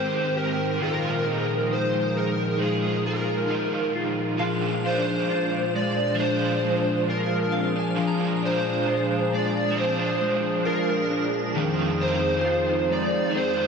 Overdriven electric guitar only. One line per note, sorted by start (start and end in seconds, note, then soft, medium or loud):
0.00 0.80 G#3 medium
0.00 0.81 C4 medium
0.00 0.84 D#4 medium
0.00 0.83 G4 medium
0.78 2.58 A#2 medium
0.78 2.56 D#3 medium
0.82 2.59 G#3 medium
0.82 2.60 D#4 medium
0.86 2.62 F4 medium
2.57 3.46 D#3 medium
2.57 3.49 G#3 medium
2.61 3.50 D#4 medium
2.61 3.53 F4 medium
3.47 4.38 D#3 medium
3.47 4.39 G#3 medium
3.52 4.40 D#4 medium
3.52 4.41 F4 medium
4.38 4.83 A#2 medium
4.38 4.84 F3 medium
4.38 4.84 G#3 medium
4.38 4.85 D4 medium
4.38 4.82 F4 medium
4.83 6.19 D4 soft
4.83 6.26 F4 medium
4.89 6.19 G#3 soft
6.15 7.96 F3 medium
6.19 7.97 G#3 medium
6.19 7.97 D4 medium
6.26 7.98 F4 medium
7.95 8.41 A#2 medium
7.95 8.41 F3 medium
7.95 8.42 G#3 medium
7.95 8.42 D4 medium
7.95 8.39 F4 medium
8.40 9.77 D4 soft
8.40 9.83 F4 soft
8.46 9.76 G#3 soft
9.71 11.55 F3 medium
9.76 11.57 G#3 medium
9.80 11.57 D4 medium
9.80 11.57 F4 medium
11.54 12.00 F2 medium
11.54 12.00 C3 medium
11.54 12.00 D#3 medium
11.54 12.01 G#3 medium
11.54 12.00 C4 medium
11.54 11.97 F4 loud
11.98 13.39 C4 medium
11.98 13.33 F4 medium
12.03 13.30 D#3 soft
12.03 13.35 G#3 soft
13.30 13.67 D#3 medium
13.36 13.67 G#3 medium
13.36 13.67 C4 medium
13.43 13.67 F4 medium